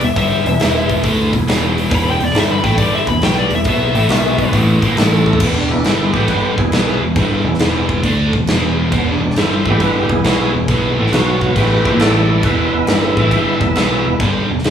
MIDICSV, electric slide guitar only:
0, 0, Header, 1, 2, 480
1, 0, Start_track
1, 0, Tempo, 438596
1, 182, Time_signature, 4, 2, 24, 8
1, 16090, End_track
2, 0, Start_track
2, 0, Title_t, "Electric slide guitar"
2, 0, Program_c, 0, 29
2, 40, Note_on_c, 0, 76, 92
2, 186, Note_off_c, 0, 76, 0
2, 199, Note_on_c, 0, 76, 103
2, 1117, Note_off_c, 0, 76, 0
2, 2138, Note_on_c, 0, 83, 116
2, 2271, Note_off_c, 0, 83, 0
2, 2296, Note_on_c, 0, 79, 99
2, 2430, Note_off_c, 0, 79, 0
2, 2462, Note_on_c, 0, 74, 97
2, 2593, Note_off_c, 0, 74, 0
2, 2617, Note_on_c, 0, 76, 98
2, 2748, Note_on_c, 0, 83, 100
2, 2750, Note_off_c, 0, 76, 0
2, 2887, Note_on_c, 0, 79, 94
2, 2895, Note_off_c, 0, 83, 0
2, 3039, Note_on_c, 0, 74, 102
2, 3044, Note_off_c, 0, 79, 0
2, 3199, Note_off_c, 0, 74, 0
2, 3225, Note_on_c, 0, 76, 83
2, 3372, Note_off_c, 0, 76, 0
2, 3375, Note_on_c, 0, 83, 102
2, 3527, Note_off_c, 0, 83, 0
2, 3540, Note_on_c, 0, 79, 97
2, 3689, Note_off_c, 0, 79, 0
2, 3704, Note_on_c, 0, 74, 96
2, 3851, Note_off_c, 0, 74, 0
2, 3885, Note_on_c, 0, 76, 95
2, 4022, Note_off_c, 0, 76, 0
2, 4046, Note_on_c, 0, 76, 112
2, 4957, Note_off_c, 0, 76, 0
2, 16090, End_track
0, 0, End_of_file